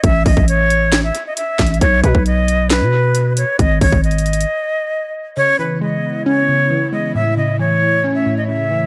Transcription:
<<
  \new Staff \with { instrumentName = "Flute" } { \time 4/4 \key cis \minor \tempo 4 = 135 e''8 dis''8 cis''4~ cis''16 e''8 dis''16 e''4 | cis''8 b'8 dis''4 b'4. cis''8 | dis''8 cis''8 dis''2. | cis''8 b'8 dis''4 cis''4. dis''8 |
e''8 dis''8 cis''4~ cis''16 e''8 dis''16 e''4 | }
  \new Staff \with { instrumentName = "Analog synth pad" } { \time 4/4 \key cis \minor r1 | r1 | r1 | <cis b e'>1 |
<a cis''>1 | }
  \new Staff \with { instrumentName = "Synth pluck" } { \clef bass \time 4/4 \key cis \minor r1 | r1 | r1 | cis8 e8 gis4 cis'8 cis8 e8 gis8 |
a,8 cis8 e4 cis'8 a,8 cis8 e8 | }
  \new Staff \with { instrumentName = "808-style bass" } { \clef bass \time 4/4 \key cis \minor a,,8 a,,16 a,,4.~ a,,16 r4 a,,8 | b,,8 b,16 b,,4. b,4. r16 | gis,,8 gis,,16 gis,,4~ gis,,16 r2 | r1 |
r1 | }
  \new DrumStaff \with { instrumentName = "Drums" } \drummode { \time 4/4 <hh bd>8 <hho bd>16 bd16 hh8 hh8 <hc hh sn>8 hh8 \tuplet 3/2 { hh16 r16 r16 <hc hh bd sn>16 hh16 hh16 } | <hh bd>8 <hh bd>16 bd16 hh8 hh8 <hc hh sn>4 hh8 hh8 | <hh bd>8 <hho bd>16 bd16 \tuplet 3/2 { hh16 hh16 hh16 hh16 hh16 hh16 } r4 r4 | r4 r4 r4 r4 |
r4 r4 r4 r4 | }
>>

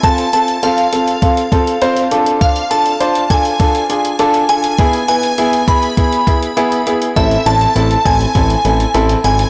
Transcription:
<<
  \new Staff \with { instrumentName = "Synth bell" } { \time 4/4 \key a \minor \tempo 4 = 101 a''8 a''8 f''2~ f''8 r8 | f''8 a''4 gis''2 gis''8~ | gis''8 gis''4 b''2 r8 | e''8 a''4 gis''4. r8 gis''8 | }
  \new Staff \with { instrumentName = "Grand piano" } { \time 4/4 \key a \minor <c' f' a'>8 <c' f' a'>8 <c' f' a'>8 <c' f' a'>8 <c' f' a'>8 <c' f' a'>8 <c' f' c''>8 <d' f' a'>8~ | <d' f' a'>8 <d' f' a'>8 <d' f' c''>8 <d' f' a'>8 <d' f' a'>8 <d' f' gis'>8 <d' f' a'>8 <d' f' a'>8 | <b e' gis'>8 <b e' b'>8 <b e' gis'>8 <b e' gis'>8 <b e' gis'>8 <b e' gis'>8 <b e' gis'>8 <b e' gis'>8 | <c' e' a'>8 <c' e' a'>8 <c' e' a'>8 <c' e' a'>8 <c' e' a'>8 <c' e' a'>8 <c' e' a'>8 <c' e' a'>8 | }
  \new Staff \with { instrumentName = "Analog synth bass" } { \clef bass \time 4/4 \key a \minor r1 | r1 | r1 | a,,8 a,,8 a,,8 a,,8 a,,8 a,,8 a,,8 gis,,8 | }
  \new DrumStaff \with { instrumentName = "Drums" } \drummode { \time 4/4 <hh bd>16 hh16 hh16 hh16 hh16 hh16 hh16 hh16 <hh bd>16 hh16 <hh bd>16 hh16 hh16 hh16 hh16 hh16 | <hh bd>16 hh16 hh16 hh16 hh16 hh16 <hh bd>16 hh16 <hh bd>16 hh16 hh16 hh16 hh16 hh16 hh16 hh16 | <hh bd>16 hh16 hh16 hh16 hh16 hh16 <hh bd>16 hh16 <hh bd>16 hh16 <hh bd>16 hh16 hh16 hh16 hh16 hh16 | <hh bd>16 hh16 hh16 hh16 hh16 hh16 <hh bd>16 hh16 <hh bd>16 hh16 hh16 hh16 hh16 hh16 hh16 hh16 | }
>>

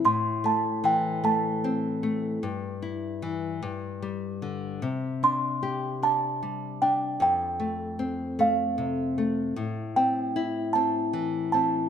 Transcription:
<<
  \new Staff \with { instrumentName = "Music box" } { \time 6/8 \key c \major \tempo 4. = 51 c'''8 a''8 g''8 a''4.~ | a''2 r4 | r8 c'''4 a''4 g''8 | g''4. f''4 r8 |
r8 g''4 a''4 a''8 | }
  \new Staff \with { instrumentName = "Nylon-string guitar" } { \time 6/8 \key c \major a,8 a8 e8 a8 c'8 a8 | g,8 e'8 e8 g,8 g8 d8 | c8 d'8 g'8 d'8 g8 d'8 | f,8 a8 c'8 a8 c8 a8 |
a,8 c'8 e'8 c'8 e8 c'8 | }
>>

